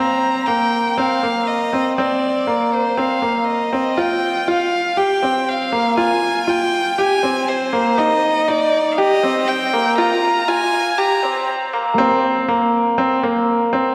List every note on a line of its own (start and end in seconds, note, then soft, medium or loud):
0.00 0.42 C4 medium
0.00 0.48 A#5 medium
0.46 0.93 A#3 medium
0.46 0.99 G5 medium
0.98 1.20 C4 medium
0.98 1.49 F5 medium
1.23 1.68 A#3 medium
1.47 1.97 D#5 medium
1.73 1.95 C4 medium
1.98 2.43 C4 medium
1.98 2.75 D5 medium
2.47 2.92 A#3 medium
2.73 2.99 C5 medium
2.97 3.20 C4 medium
2.97 3.47 F5 medium
3.22 3.67 A#3 medium
3.47 4.00 D#5 medium
3.73 3.95 C4 medium
3.97 4.43 F4 medium
3.97 4.50 G5 medium
4.48 4.93 F4 medium
4.48 5.00 F5 medium
4.97 5.20 G4 medium
4.97 5.50 G5 medium
5.22 5.68 C4 medium
5.49 5.98 F5 medium
5.72 5.95 A#3 medium
5.97 6.43 F4 medium
5.97 6.50 G#5 medium
6.47 6.93 F4 medium
6.47 7.01 G5 loud
6.98 7.21 G4 medium
6.98 7.50 G#5 loud
7.23 7.68 C4 medium
7.49 8.00 C5 medium
7.73 7.95 A#3 medium
7.98 8.43 D#4 medium
7.98 8.50 D#5 medium
8.48 8.93 D#4 medium
8.48 8.93 D5 loud
8.92 9.00 F5 medium
8.98 9.20 G4 medium
8.98 9.50 D#5 loud
9.23 9.68 C4 medium
9.48 9.98 G5 loud
9.73 9.96 A#3 medium
9.98 10.43 F4 loud
9.98 10.50 A#5 loud
10.48 10.93 F4 medium
10.48 11.00 G#5 loud
10.98 11.20 G4 medium
10.98 11.48 A#5 loud
11.23 11.68 C4 medium
11.73 11.96 A#3 medium
11.98 12.43 C4 loud
12.48 12.93 A#3 medium
12.98 13.20 C4 medium
13.23 13.68 A#3 medium
13.73 13.95 C4 medium